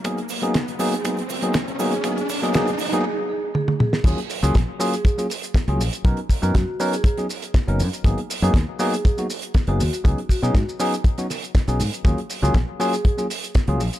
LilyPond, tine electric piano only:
\new Staff \with { instrumentName = "Tine electric piano" } { \time 4/4 \key ees \minor \tempo 4 = 120 <fis ais b dis' aes'>16 r8 <fis ais b dis' aes'>16 r8 <fis ais b dis' aes'>16 r16 <fis ais b dis' aes'>16 r8 <fis ais b dis' aes'>16 r8 <fis ais b dis' aes'>16 r16 | <ges bes ces' ees' aes'>16 r8 <ges bes ces' ees' aes'>16 <ges bes ces' ees' aes'>16 r8 <ges bes ces' ees' aes'>16 r2 | <ges bes des' f' aes'>16 r8 <ges bes des' f' aes'>16 r8 <ges bes des' f' aes'>16 r8 <ges bes des' f' aes'>16 r8. <ges bes des' f' aes'>16 r8 | <fis b cis' dis' ais'>16 r8 <fis b cis' dis' ais'>16 r8 <fis b cis' dis' ais'>16 r8 <fis b cis' dis' aes'>16 r8. <fis b cis' dis' ais'>16 r8 |
<ges bes ces' ees' aes'>16 r8 <ges bes ces' ees' aes'>16 r8 <ges bes ces' ees' aes'>16 r8 <ges bes ces' ees' ges'>16 r8. <ges bes ces' ees' aes'>16 r8 | <ges ces' des' ees' aes'>16 r8 <ges ces' des' ees' aes'>16 r8 <ges ces' des' ees' aes'>16 r8 <ges ces' des' ees' ges'>16 r8. <ges ces' des' ees' aes'>16 r8 | <ges bes des' f' aes'>16 r8 <ges bes des' f' aes'>16 r8 <ges bes des' f' aes'>16 r8 <ges bes des' f' aes'>16 r8. <ges bes des' f' aes'>16 r8 | }